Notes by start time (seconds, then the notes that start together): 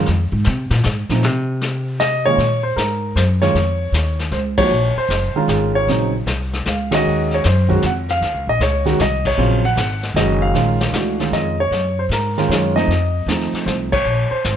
0.06 F2, brush sweep, snare
0.32 G#2
0.44 C3, snare
0.70 A#2, snare
0.84 G#2, snare
1.10 A#2 F3 A3 C4 D#4, snare
1.22 C3, brush sweep, snare
1.61 snare
2.00 D#5, snare
2.26 A#2 D#3 G#3 C#4 F4 C#5
2.38 A#2, brush sweep, snare
2.63 C5
2.76 G#2 A#4, snare, hi-hat pedal
3.16 F#2 C5, snare, hi-hat pedal
3.42 D#3 G#3 C#4 F4 C#5, snare
3.55 F2, brush sweep, snare
3.92 D#2, snare, hi-hat pedal
4.19 snare
4.31 C#2 C5, snare
4.57 F3 A#3 D#4 F#4 C#5, kick, crash
4.71 A#1, brush sweep
4.97 C5, muted upright bass stroke
5.09 F#1, snare, hi-hat pedal
5.35 D#3 G#3 C#4 F4 A#4, muted upright bass stroke
5.48 G#1 G#4, snare, hi-hat pedal
5.75 C#5
5.87 A#1 C#3 F#3 C4 D#4, brush sweep, snare
6.26 C2, snare, hi-hat pedal
6.53 snare
6.65 C#2 F5, snare, hi-hat pedal
6.91 D#3 G#3 C#4 F#4 D#5, snare, ride
7.05 D#2, brush sweep
7.31 C#5, snare
7.44 F#2 C5, snare, hi-hat pedal
7.69 D#3 G#3 C#4 F#4, kick
7.82 F2 F#5, snare, hi-hat pedal
8.09 F5, snare
8.21 D#2, brush sweep, snare
8.34 C#2
8.47 A#1 D#5
8.60 C#2 C#5, snare, hi-hat pedal
8.85 D#3 G#3 C#4 F#4, snare
8.99 C2 D#5, snare, hi-hat pedal
9.25 C#5, kick, crash
9.38 A#1 C#3 F#3 C4 F4, brush sweep
9.65 F#5
9.76 G#1, snare, hi-hat pedal
10.03 snare
10.14 F#1 D#3 G#3 C#4 F#4 D#5, snare, hi-hat pedal
10.42 F5
10.54 A#1 D#3 G#3 C#4 F4, brush sweep, snare
10.81 snare
10.92 C#2 E3 A3 D4 F#4, snare, hi-hat pedal
11.20 D#3 G#3 C#4 F4, snare
11.32 F2 D#5, snare
11.60 C#5
11.71 F#2, brush sweep, snare
11.99 C5
12.09 G#2 A#4, snare, hi-hat pedal
12.38 D#3 G#3 C#4 F4, snare
12.49 F#2 C#5, snare, hi-hat pedal
12.76 F3 A3 C4 D#4 D#5, snare
12.88 F2, brush sweep, snare
13.26 D#2 F3 A3 C4 D#4, snare, hi-hat pedal
13.41 snare
13.53 muted upright bass stroke, snare
13.66 C2 C5, snare, hi-hat pedal
13.92 C#5, kick, crash
14.05 A#1, brush sweep
14.31 C5, muted upright bass stroke
14.44 G#1, snare, hi-hat pedal